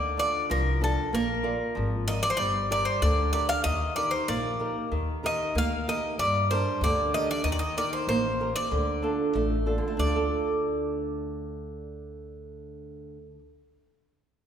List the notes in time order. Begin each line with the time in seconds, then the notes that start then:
Already playing: D2 D3 D5
0.17 D4 F4 D5
0.50 C2 F3 A#4
0.81 D4 F4 A4
1.13 A#1 A#3 A#4
1.43 F4 A#4 D5
1.75 G#1 F3
2.07 F4 A#4 D5 D#5
2.23 D5
2.30 C5
2.37 G1 G3 D5
2.71 G4 A#4 D5
2.85 C5
3.02 D2 D3 D5
3.32 G4 A#4 D5
3.49 F5
3.64 D#2 D#3 D#5
3.96 D#4 G4 A#4 D5
4.11 C5
4.28 A#1 A#3 D5
4.59 D#4 G4 A#4
4.92 D#2 D#3
5.23 D#4 G4 A#4 D#5
5.55 D2 A#3 F5
5.87 D#4 G4 A#4 D#5
6.18 G2 G3 D5
6.51 D4 G4 A#4 C5
6.81 D2 D3 D5
7.14 D4 G4 A#4 D#5
7.31 D5
7.44 D#2 D#3 D#5
7.52 D5
7.59 D#5
7.77 D#4 G4 A#4 D5
7.93 C5
8.07 A1 A#3 C5
8.40 D#4 G4 A#4
8.56 D5
8.71 D2 D3
9.02 D4 F4 A4
9.35 A1 A3
9.66 D4 F4 A4
9.78 D3
9.88 A3
9.97 D2 D4 D5
10.07 F4
10.16 A4